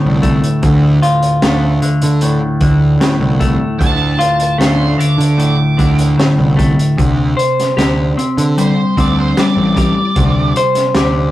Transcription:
Already playing: D2 A2 D3 A3 F4 D6
0.06 C2
0.23 A3, kick, closed hi-hat
0.44 closed hi-hat
0.62 D2, kick, closed hi-hat
1.02 F4, closed hi-hat
1.23 closed hi-hat
1.42 D2 A3, snare, closed hi-hat
1.82 D3, closed hi-hat
2.02 D3, closed hi-hat
2.21 A2, closed hi-hat
2.61 D2 D3, kick, closed hi-hat
3.00 A2, snare, closed hi-hat
3.20 C2
3.40 A3, kick, closed hi-hat
3.78 D2 A5, kick, closed hi-hat
4.19 F4, closed hi-hat
4.40 closed hi-hat
4.58 D2 A3 C6, snare, closed hi-hat
4.98 D3 D6, closed hi-hat
5.18 D3, closed hi-hat
5.38 A2 D6, closed hi-hat
5.78 D2 D3, kick, closed hi-hat
5.99 closed hi-hat
6.17 A2, snare, closed hi-hat
6.38 C2
6.56 A3, kick, closed hi-hat
6.79 closed hi-hat
6.97 D2 C3, kick, closed hi-hat
7.37 C5, closed hi-hat
7.60 snare, closed hi-hat
7.77 D2 G4, snare, closed hi-hat
8.18 C4, closed hi-hat
8.38 D3, closed hi-hat
8.58 G3 C5, closed hi-hat
8.97 D2 C4 D5, kick, closed hi-hat
9.19 C5
9.37 G3 D5, snare, closed hi-hat
9.57 A1
9.77 G4 D5, kick, closed hi-hat
10.16 D2 C3, kick, closed hi-hat
10.56 C5, closed hi-hat
10.75 snare, closed hi-hat
10.95 D2 G4, snare, closed hi-hat

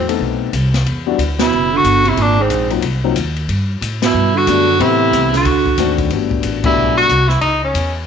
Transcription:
Already playing: E2
0.09 A3 B3 C4 D#4 A4, ride
0.20 B1, kick
0.53 C2, kick, hi-hat pedal, ride
0.74 snare, ride
0.86 E2, kick, ride
1.06 G3 B3 D4 E4 F#4
1.18 D2, kick, hi-hat pedal, ride
1.39 B2 E4, snare, ride
1.52 F#1
1.73 D3 F#4
1.84 G1, kick, hi-hat pedal, ride
2.05 C3 E4, ride
2.17 G#1 A#2, kick, ride
2.22 D4
2.39 G#2 C4
2.50 A#1, kick, hi-hat pedal, ride
2.70 F#3 A#3 C4 D#4 F4, ride
2.82 C2, kick, ride
3.04 F#3 A#3 C4 D#4 F4
3.16 D#2, kick, hi-hat pedal, ride
3.36 ride
3.48 G2, kick, ride
3.81 A2, kick, hi-hat pedal, ride
4.02 B2 E4, snare, ride
4.14 G2
4.34 D3 F#4
4.47 F#2 G3 A3 B3 D4 F#4, kick, hi-hat pedal, ride
4.79 A2 C3 E3 A3 B3 C4 E4 G4, kick, ride
5.13 C2, kick, hi-hat pedal, ride
5.32 D3, snare, ride
5.37 F#4
5.45 D2, kick, ride
5.66 kick
5.78 D#2 D#3 A3 C4 D4 F#4, kick, hi-hat pedal, ride
5.98 kick, ride
6.10 G1 G3 A3 B3 D4 F#4, kick, ride
6.31 kick
6.43 A1, kick, hi-hat pedal, ride
6.64 G3 A3 B3 D4 E4 F#4, kick, crash
6.76 B1
6.97 F#4
7.09 C2, kick, hi-hat pedal, ride
7.29 E4, snare
7.41 C#2 D#4, kick, ride
7.64 C#4
7.74 E2, kick, hi-hat pedal, ride

